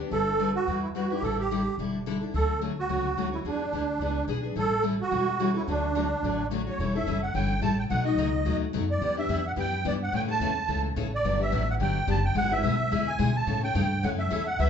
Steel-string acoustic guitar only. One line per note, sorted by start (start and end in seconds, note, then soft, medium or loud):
0.00 0.11 B3 soft
0.00 0.10 D4 soft
0.00 0.11 G4 medium
0.11 0.30 G3 soft
0.11 0.30 D4 medium
0.11 0.30 E4 medium
0.11 0.30 B4 medium
0.39 0.49 G3 medium
0.39 0.50 D4 medium
0.39 0.50 E4 medium
0.39 0.50 B4 medium
0.67 0.86 G3 medium
0.67 0.86 D4 medium
0.67 0.86 E4 medium
0.67 0.86 B4 medium
0.95 1.05 G3 medium
0.95 1.05 D4 medium
0.95 1.05 E4 medium
0.95 1.06 B4 medium
1.10 1.23 D4 soft
1.10 1.23 E4 soft
1.10 1.22 B4 soft
1.23 1.41 D3 soft
1.23 1.41 G3 medium
1.23 1.42 D4 medium
1.23 1.42 E4 medium
1.23 1.42 A4 medium
1.51 1.61 D3 medium
1.51 1.61 G3 medium
1.51 1.61 D4 medium
1.51 1.61 E4 medium
1.51 1.61 A4 medium
1.79 1.97 D3 medium
1.79 1.97 G3 medium
1.79 1.97 D4 medium
1.79 1.97 E4 medium
1.79 1.97 A4 medium
2.06 2.16 D3 medium
2.06 2.16 G3 medium
2.06 2.16 D4 medium
2.06 2.17 E4 medium
2.06 2.17 A4 medium
2.21 2.34 D4 soft
2.21 2.34 E4 soft
2.21 2.33 A4 soft
2.34 2.52 D3 medium
2.34 2.52 F#3 medium
2.34 2.53 A3 medium
2.34 2.53 C#4 medium
2.34 2.53 F#4 medium
2.61 2.71 D3 medium
2.61 2.72 F#3 medium
2.61 2.72 A3 medium
2.61 2.72 C#4 medium
2.61 2.72 F#4 medium
2.89 3.07 D3 medium
2.89 3.07 F#3 medium
2.89 3.08 A3 medium
2.89 3.08 C#4 medium
2.89 3.08 F#4 medium
3.17 3.27 D3 medium
3.17 3.27 F#3 medium
3.17 3.27 A3 medium
3.17 3.28 C#4 medium
3.17 3.28 F#4 medium
3.32 3.45 A3 soft
3.32 3.45 C#4 soft
3.32 3.44 F#4 soft
3.45 3.63 E3 medium
3.45 3.63 B3 soft
3.45 3.63 D4 medium
3.45 3.64 G#4 medium
3.73 3.83 E3 medium
3.73 3.83 B3 medium
3.73 3.83 D4 medium
3.73 3.84 G#4 medium
4.01 4.19 E3 medium
4.01 4.19 B3 medium
4.01 4.19 D4 medium
4.01 4.19 G#4 medium
4.28 4.38 E3 medium
4.28 4.38 B3 medium
4.28 4.38 D4 medium
4.28 4.39 G#4 medium
4.43 4.56 B3 soft
4.43 4.56 D4 soft
4.43 4.55 G#4 medium
4.56 4.74 E3 medium
4.56 4.74 G3 medium
4.56 4.74 C#4 medium
4.56 4.75 E4 medium
4.56 4.75 A4 medium
4.83 4.93 E3 medium
4.83 4.94 G3 medium
4.83 4.94 C#4 medium
4.83 4.94 E4 medium
4.83 4.94 A4 medium
5.11 5.30 E3 medium
5.11 5.30 G3 medium
5.11 5.30 C#4 medium
5.11 5.30 E4 medium
5.11 5.30 A4 medium
5.39 5.49 E3 medium
5.39 5.50 G3 medium
5.39 5.50 C#4 medium
5.39 5.50 E4 medium
5.39 5.50 A4 medium
5.54 5.67 C#4 soft
5.54 5.67 E4 soft
5.54 5.66 A4 soft
5.68 5.86 D3 medium
5.68 5.86 F#3 medium
5.68 5.86 A3 medium
5.68 5.86 C#4 medium
5.68 5.86 F#4 medium
5.95 6.05 D3 medium
5.95 6.05 F#3 medium
5.95 6.05 A3 medium
5.95 6.05 C#4 medium
5.95 6.06 F#4 medium
6.24 6.42 D3 medium
6.24 6.42 F#3 medium
6.24 6.42 A3 medium
6.24 6.42 C#4 medium
6.24 6.42 F#4 medium
6.51 6.61 D3 medium
6.51 6.61 F#3 medium
6.51 6.61 A3 medium
6.51 6.61 C#4 medium
6.51 6.62 F#4 medium
6.67 6.79 A3 soft
6.67 6.79 C#4 soft
6.67 6.78 F#4 soft
6.80 6.94 E3 medium
6.80 6.94 G3 medium
6.80 6.94 C#4 medium
6.80 6.94 E4 medium
6.80 6.94 A4 medium
6.95 7.06 C#4 soft
6.95 7.07 E4 soft
6.95 7.06 A4 medium
7.07 7.17 E3 medium
7.07 7.17 G3 medium
7.07 7.17 C#4 medium
7.07 7.17 E4 medium
7.07 7.17 A4 medium
7.34 7.52 E3 medium
7.34 7.53 G3 medium
7.34 7.53 C#4 medium
7.34 7.53 E4 medium
7.34 7.53 A4 medium
7.62 7.72 E3 medium
7.62 7.72 G3 medium
7.62 7.72 C#4 medium
7.62 7.72 E4 medium
7.62 7.73 A4 loud
7.90 8.05 B2 medium
7.90 8.05 F#3 medium
7.90 8.05 A3 medium
7.90 8.05 D#4 medium
7.90 8.04 F#4 medium
8.05 8.17 A3 soft
8.05 8.17 D#4 medium
8.05 8.17 F#4 medium
8.18 8.28 B2 medium
8.18 8.28 F#3 medium
8.18 8.28 A3 medium
8.18 8.28 D#4 medium
8.18 8.28 F#4 medium
8.45 8.64 B2 medium
8.45 8.64 F#3 medium
8.45 8.64 A3 medium
8.45 8.64 D#4 medium
8.45 8.64 F#4 medium
8.73 8.83 B2 medium
8.73 8.84 F#3 medium
8.73 8.84 A3 medium
8.73 8.84 D#4 medium
8.73 8.84 F#4 medium
9.02 9.16 E3 medium
9.02 9.17 B3 medium
9.02 9.17 D4 medium
9.02 9.16 G4 medium
9.17 9.28 B3 soft
9.17 9.29 D4 medium
9.17 9.29 G4 medium
9.29 9.39 E3 medium
9.29 9.39 B3 medium
9.29 9.40 D4 medium
9.29 9.40 G4 medium
9.56 9.75 E3 medium
9.56 9.75 B3 medium
9.56 9.76 D4 medium
9.56 9.76 G4 medium
9.85 9.95 E3 medium
9.85 9.95 B3 medium
9.85 9.95 D4 medium
9.85 9.95 G4 loud
10.13 10.28 C#3 medium
10.13 10.28 E3 medium
10.13 10.28 A3 medium
10.13 10.28 C#4 medium
10.13 10.27 A4 medium
10.28 10.40 A3 soft
10.28 10.41 C#4 soft
10.28 10.40 A4 medium
10.41 10.51 C#3 medium
10.41 10.51 E3 medium
10.41 10.51 A3 medium
10.41 10.51 C#4 medium
10.41 10.51 A4 medium
10.68 10.87 C#3 medium
10.68 10.87 E3 medium
10.68 10.87 A3 medium
10.68 10.87 C#4 medium
10.68 10.87 A4 medium
10.96 11.06 C#3 medium
10.96 11.06 E3 medium
10.96 11.07 A3 medium
10.96 11.07 C#4 medium
10.96 11.07 A4 medium
11.25 11.39 D3 medium
11.25 11.39 F#3 medium
11.25 11.40 B3 medium
11.25 11.39 D4 medium
11.25 11.38 G4 medium
11.40 11.51 B3 soft
11.40 11.51 D4 medium
11.40 11.52 G4 medium
11.52 11.62 D3 medium
11.52 11.62 F#3 medium
11.52 11.62 B3 medium
11.52 11.62 D4 medium
11.52 11.63 G4 medium
11.80 11.98 D3 medium
11.80 11.98 F#3 medium
11.80 11.98 B3 medium
11.80 11.99 D4 medium
11.80 11.99 G4 medium
12.08 12.18 D3 medium
12.08 12.18 F#3 medium
12.08 12.18 B3 medium
12.08 12.18 D4 medium
12.08 12.18 G4 medium
12.35 12.50 D3 medium
12.35 12.50 G#3 medium
12.35 12.51 B3 medium
12.35 12.50 E4 medium
12.35 12.49 G#4 medium
12.50 12.62 B3 soft
12.50 12.62 E4 medium
12.50 12.63 G#4 medium
12.63 12.73 D3 medium
12.63 12.74 G#3 medium
12.63 12.74 B3 medium
12.63 12.74 E4 medium
12.63 12.74 G#4 medium
12.91 13.10 D3 medium
12.91 13.10 G#3 medium
12.91 13.10 B3 medium
12.91 13.10 E4 medium
12.91 13.10 G#4 medium
13.19 13.29 D3 medium
13.19 13.29 G#3 medium
13.19 13.29 B3 medium
13.19 13.29 E4 medium
13.19 13.30 G#4 medium
13.47 13.62 C#3 medium
13.47 13.62 E3 medium
13.47 13.62 A3 medium
13.47 13.62 C#4 medium
13.47 13.61 A4 medium
13.63 13.74 A3 medium
13.63 13.74 C#4 medium
13.63 13.74 A4 medium
13.75 13.85 C#3 medium
13.75 13.85 E3 medium
13.75 13.85 A3 medium
13.75 13.85 C#4 medium
13.75 13.86 A4 medium
14.03 14.21 C#3 medium
14.03 14.21 E3 medium
14.03 14.21 A3 medium
14.03 14.22 C#4 medium
14.03 14.22 A4 medium
14.30 14.41 C#3 medium
14.30 14.41 E3 medium
14.30 14.41 A3 medium
14.30 14.41 C#4 medium
14.30 14.41 A4 medium
14.59 14.70 D3 medium
14.59 14.70 F#3 medium
14.59 14.70 B3 medium
14.59 14.70 F#4 medium
14.59 14.70 B4 medium